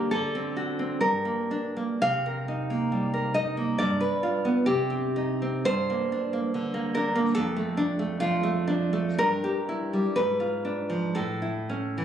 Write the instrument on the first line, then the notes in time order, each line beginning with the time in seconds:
nylon-string guitar
Already playing: D3 A#3 G4
0.11 D3 A4
0.35 C4
0.57 F#4
0.79 C4
1.01 G2 A#4
1.25 A#3
1.51 D4
1.77 A#3
2.02 C3 F5
2.26 A#4
2.48 D#4
2.70 A#3
2.92 G3
3.14 A#4
3.34 D#4 D#5
3.57 A#3
3.78 G2 D5
4.01 B4
4.23 F4
4.45 B3
4.66 C3 G4
4.90 C4
5.16 D#4
5.42 C4
5.65 G2 C5
5.90 A#3
6.12 D4
6.33 A#3
6.54 D3
6.74 A#3
6.95 D4 A#4
7.15 A#3
7.35 F2 A4
7.57 A3
7.77 D4
7.99 A3
8.20 F3 F4
8.43 A3
8.68 D4
8.93 A3
9.19 G2 A#4
9.44 G4
9.69 E4
9.93 G3
10.16 G#2 B4
10.40 F4
10.65 D4
10.90 F3
11.15 A2 A4
11.42 E4
11.70 C#4
11.98 E3